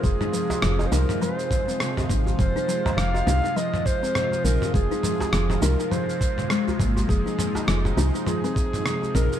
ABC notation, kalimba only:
X:1
M:4/4
L:1/16
Q:"Swing 16ths" 1/4=102
K:Fm
V:1 name="Kalimba" clef=bass
F, E F, z F,2 E E F,3 C C,2 E z | F, E F, z F,2 E E F,3 C C,2 E z | F, E F, z F,2 E E F, z2 C, A, F B, z | F, E F, z F,2 E E F, C3 C,2 E z |]